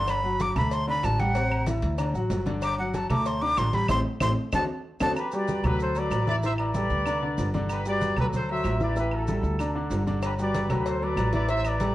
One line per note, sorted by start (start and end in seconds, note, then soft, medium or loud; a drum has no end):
0.00 0.50 G1 loud
0.00 0.18 D3 medium
0.00 0.18 D4 medium
0.00 0.19 D5 medium
0.00 0.12 C6 loud
0.08 0.43 B5 loud
0.08 cowbell loud
0.08 high conga soft
0.08 low agogo loud
0.08 claves medium
0.08 maracas medium
0.23 0.50 F#3 medium
0.23 0.50 F#4 medium
0.23 0.50 F#5 medium
0.23 high conga soft
0.40 0.57 D6 loud
0.40 cowbell medium
0.40 high conga medium
0.40 low timbale medium
0.40 low agogo medium
0.40 maracas medium
0.55 1.00 D2 medium
0.55 0.82 A3 medium
0.55 0.82 A4 medium
0.55 0.82 A5 medium
0.55 0.75 B5 medium
0.55 cowbell medium
0.55 low conga medium
0.55 low agogo loud
0.55 claves medium
0.55 maracas soft
0.71 0.88 C6 loud
0.71 cowbell loud
0.71 high conga soft
0.71 maracas medium
0.87 1.13 D3 medium
0.87 1.14 D4 medium
0.87 1.14 D5 medium
0.87 1.06 B5 loud
0.87 high conga soft
0.87 low agogo medium
1.03 1.77 A1 loud
1.03 1.21 A5 loud
1.03 cowbell medium
1.03 high conga soft
1.03 low timbale medium
1.03 low agogo loud
1.03 claves medium
1.03 maracas medium
1.19 1.32 G3 medium
1.19 1.33 G4 medium
1.19 1.67 F#5 loud
1.19 1.33 G5 medium
1.19 cowbell medium
1.19 high conga medium
1.19 maracas soft
1.34 1.61 C3 medium
1.34 1.61 C4 medium
1.34 1.61 C5 medium
1.34 cowbell loud
1.34 high conga soft
1.34 low agogo medium
1.34 maracas medium
1.51 high conga soft
1.51 low agogo loud
1.51 claves medium
1.66 1.93 E3 medium
1.66 1.93 E4 medium
1.66 1.93 E5 medium
1.66 cowbell medium
1.66 high conga loud
1.66 low timbale medium
1.66 low agogo medium
1.66 maracas medium
1.82 2.12 D2 loud
1.82 cowbell medium
1.82 high conga soft
1.82 maracas soft
1.98 2.12 D3 medium
1.98 2.12 D4 medium
1.98 2.12 D5 medium
1.98 cowbell medium
1.98 low agogo loud
1.98 claves medium
1.98 maracas medium
2.14 2.29 A1 medium
2.14 2.41 F#3 medium
2.14 2.41 F#4 medium
2.14 2.41 F#5 medium
2.14 high conga soft
2.14 maracas medium
2.30 3.04 G1 medium
2.30 cowbell medium
2.30 high conga soft
2.30 low timbale medium
2.30 low agogo medium
2.30 maracas medium
2.46 2.72 D3 medium
2.46 2.72 D4 loud
2.46 2.73 D5 medium
2.46 cowbell medium
2.46 high conga medium
2.46 low agogo medium
2.46 maracas soft
2.62 2.78 D6 loud
2.62 cowbell loud
2.62 high conga soft
2.62 low agogo loud
2.62 claves medium
2.62 maracas medium
2.78 3.04 F#3 medium
2.78 3.05 F#4 medium
2.78 2.96 F#5 medium
2.78 3.05 F#5 medium
2.78 high conga soft
2.94 3.10 A5 medium
2.94 cowbell medium
2.94 high conga loud
2.94 low timbale medium
2.94 low agogo medium
2.94 maracas medium
3.10 3.54 D2 medium
3.10 3.36 A3 medium
3.10 3.36 A4 medium
3.10 3.37 A5 medium
3.10 3.28 D6 loud
3.10 cowbell medium
3.10 low conga medium
3.10 low agogo loud
3.10 claves medium
3.10 maracas soft
3.25 3.43 C6 loud
3.25 cowbell medium
3.25 high conga soft
3.25 maracas medium
3.42 3.68 D3 medium
3.42 3.68 D4 medium
3.42 3.68 D5 medium
3.42 3.60 D6 loud
3.42 high conga soft
3.42 low agogo medium
3.57 3.87 A1 medium
3.57 3.76 C6 loud
3.57 cowbell medium
3.57 high conga soft
3.57 low timbale medium
3.57 low agogo loud
3.57 claves medium
3.57 maracas medium
3.73 3.86 G3 medium
3.73 3.87 G4 medium
3.73 3.87 G5 medium
3.73 3.90 B5 loud
3.73 cowbell medium
3.73 high conga medium
3.73 maracas soft
3.89 4.01 A1 loud
3.89 3.99 A3 loud
3.89 3.99 C4 loud
3.89 3.99 E4 loud
3.89 4.00 C6 loud
3.89 cowbell loud
3.89 high conga loud
3.89 high timbale medium
3.89 claves loud
3.89 maracas loud
4.21 4.33 A1 loud
4.21 4.31 A3 loud
4.21 4.31 C4 loud
4.21 4.31 E4 loud
4.21 4.32 C6 loud
4.21 cowbell loud
4.21 high conga loud
4.21 high timbale loud
4.21 claves loud
4.21 maracas loud
4.52 4.64 D2 loud
4.52 4.63 C4 medium
4.52 4.63 D4 loud
4.52 4.63 F#4 loud
4.52 4.64 A5 medium
4.52 cowbell medium
4.52 high conga loud
4.52 high timbale loud
4.52 claves loud
4.52 maracas loud
5.00 5.12 D2 medium
5.00 5.11 C4 loud
5.00 5.11 D4 loud
5.00 5.11 F#4 loud
5.00 5.11 A5 medium
5.00 cowbell loud
5.00 high conga loud
5.00 high timbale loud
5.00 claves medium
5.00 maracas loud
5.16 5.32 G4 medium
5.16 5.31 B4 loud
5.16 high conga soft
5.16 low agogo loud
5.16 claves medium
5.16 maracas medium
5.31 5.58 G3 medium
5.31 5.59 F#4 medium
5.31 5.59 G4 medium
5.31 5.64 B4 medium
5.31 5.64 D5 loud
5.31 high conga soft
5.31 maracas medium
5.48 high conga loud
5.48 low timbale medium
5.48 low agogo medium
5.48 maracas medium
5.64 6.08 D2 loud
5.64 5.90 F#3 medium
5.64 5.90 F#4 medium
5.64 5.80 G4 medium
5.64 5.91 A4 medium
5.64 5.80 B4 loud
5.64 low conga medium
5.64 low agogo loud
5.64 claves medium
5.64 maracas soft
5.80 5.95 A4 medium
5.80 5.95 C5 loud
5.80 high conga soft
5.80 maracas medium
5.95 6.22 F#3 medium
5.95 6.22 F#4 medium
5.95 6.22 A4 medium
5.95 6.28 B4 medium
5.95 6.27 D5 loud
5.95 high conga soft
5.95 low agogo medium
5.95 maracas medium
6.11 6.85 A1 medium
6.11 high conga soft
6.11 low timbale medium
6.11 low agogo loud
6.11 claves medium
6.11 maracas medium
6.27 6.40 E3 loud
6.27 6.40 E4 loud
6.27 6.35 B4 medium
6.27 6.35 D5 loud
6.27 6.41 E5 loud
6.27 high conga medium
6.27 maracas soft
6.43 6.69 E3 medium
6.43 6.70 E4 medium
6.43 6.51 C5 medium
6.43 6.51 E5 loud
6.43 6.70 E5 medium
6.43 high conga soft
6.43 low agogo medium
6.43 maracas medium
6.58 7.51 B4 medium
6.58 7.51 D5 loud
6.58 high conga soft
6.58 low agogo loud
6.58 claves medium
6.74 7.01 G3 medium
6.74 7.01 G4 medium
6.74 7.01 A4 medium
6.74 high conga loud
6.74 low timbale medium
6.74 low agogo medium
6.74 maracas medium
6.90 7.34 D2 loud
6.90 high conga soft
6.90 maracas soft
7.06 7.19 D3 medium
7.06 7.19 D4 medium
7.06 7.19 D5 medium
7.06 high conga soft
7.06 low agogo loud
7.06 claves medium
7.06 maracas medium
7.22 7.48 D3 medium
7.22 7.48 D4 medium
7.22 7.48 D5 medium
7.22 high conga soft
7.38 8.11 G1 medium
7.38 high conga soft
7.38 low timbale medium
7.38 low agogo medium
7.38 maracas medium
7.54 7.80 D3 loud
7.54 7.80 D4 loud
7.54 7.80 D5 medium
7.54 high conga loud
7.54 low agogo medium
7.54 maracas soft
7.69 7.85 G4 medium
7.69 7.85 B4 loud
7.69 high conga soft
7.69 low agogo loud
7.69 claves medium
7.69 maracas medium
7.85 8.11 G3 medium
7.85 8.12 F#4 medium
7.85 8.12 G4 medium
7.85 8.16 B4 medium
7.85 8.16 D5 loud
7.85 high conga soft
7.85 maracas medium
8.01 high conga loud
8.01 low timbale medium
8.01 low agogo medium
8.01 maracas medium
8.16 8.61 D2 loud
8.16 8.43 F#3 medium
8.16 8.43 F#4 medium
8.16 8.26 G4 medium
8.16 8.44 A4 medium
8.16 8.26 B4 loud
8.16 low conga medium
8.16 low agogo loud
8.16 claves medium
8.16 maracas soft
8.33 8.49 A4 medium
8.33 8.49 C5 loud
8.33 high conga soft
8.33 low conga medium
8.33 maracas medium
8.49 8.75 F#3 medium
8.49 8.75 F#4 medium
8.49 8.75 A4 medium
8.49 8.79 C5 medium
8.49 8.79 E5 loud
8.49 high conga soft
8.49 low agogo medium
8.64 9.38 A1 medium
8.64 high conga soft
8.64 low timbale medium
8.64 low agogo loud
8.64 claves medium
8.64 maracas medium
8.80 8.93 E3 medium
8.80 8.93 E4 medium
8.80 8.97 B4 medium
8.80 8.97 D5 loud
8.80 8.94 E5 loud
8.80 high conga medium
8.80 maracas soft
8.96 9.22 E3 medium
8.96 9.22 E4 medium
8.96 9.12 G4 medium
8.96 9.12 B4 medium
8.96 9.22 E5 medium
8.96 high conga soft
8.96 low agogo medium
8.96 maracas medium
9.12 9.81 F#4 medium
9.12 9.81 A4 medium
9.12 high conga soft
9.12 low agogo loud
9.12 claves medium
9.28 9.54 G3 medium
9.28 9.54 E4 medium
9.28 9.54 A4 medium
9.28 high conga loud
9.28 low timbale medium
9.28 low agogo medium
9.28 maracas medium
9.43 9.88 D2 loud
9.43 maracas soft
9.59 9.73 D3 medium
9.59 9.73 D4 medium
9.59 9.73 D5 medium
9.59 high conga soft
9.59 low agogo loud
9.59 claves medium
9.59 maracas medium
9.75 10.01 D3 medium
9.75 10.01 D4 medium
9.75 10.01 D5 medium
9.75 high conga soft
9.91 10.64 G1 loud
9.91 high conga soft
9.91 low timbale medium
9.91 low agogo medium
9.91 maracas medium
10.07 10.33 D3 medium
10.07 10.33 D4 medium
10.07 10.33 D5 medium
10.07 high conga medium
10.07 low agogo medium
10.07 maracas soft
10.22 10.32 G4 medium
10.22 10.31 B4 medium
10.22 cowbell loud
10.22 high conga soft
10.22 low agogo loud
10.22 claves medium
10.22 maracas medium
10.39 10.64 G3 medium
10.39 10.65 F#4 medium
10.39 10.65 G4 medium
10.39 10.69 B4 medium
10.39 10.69 D5 loud
10.39 high conga soft
10.39 maracas medium
10.55 cowbell medium
10.55 high conga loud
10.55 low timbale medium
10.55 low agogo medium
10.55 maracas medium
10.69 11.14 D2 loud
10.69 10.96 F#3 medium
10.69 10.96 F#4 medium
10.69 10.87 G4 medium
10.69 10.96 A4 medium
10.69 10.87 B4 medium
10.69 cowbell medium
10.69 low conga medium
10.69 low agogo loud
10.69 claves medium
10.69 maracas soft
10.86 11.02 A4 medium
10.86 11.02 C5 medium
10.86 cowbell loud
10.86 maracas medium
11.02 11.27 F#3 medium
11.02 11.27 F#4 medium
11.02 11.28 A4 medium
11.02 11.34 B4 medium
11.02 11.33 D5 loud
11.02 high conga soft
11.02 low agogo medium
11.17 11.90 A1 loud
11.17 cowbell medium
11.17 high conga soft
11.17 low timbale medium
11.17 low agogo loud
11.17 claves medium
11.17 maracas medium
11.33 11.46 E3 medium
11.33 11.46 E4 medium
11.33 11.49 B4 medium
11.33 11.48 D5 loud
11.33 11.46 E5 loud
11.33 cowbell medium
11.33 high conga medium
11.33 maracas soft
11.49 11.75 E3 medium
11.49 11.75 E4 medium
11.49 11.64 C5 medium
11.49 11.75 E5 medium
11.49 11.64 E5 loud
11.49 cowbell loud
11.49 high conga soft
11.49 low agogo loud
11.49 maracas medium
11.65 11.95 B4 medium
11.65 11.95 D5 loud
11.65 high conga soft
11.65 low agogo loud
11.65 claves medium
11.65 maracas medium
11.80 11.95 G3 medium
11.80 11.95 G4 medium
11.80 11.95 A4 medium
11.80 cowbell medium
11.80 high conga loud
11.80 low timbale medium
11.80 low agogo medium
11.80 maracas medium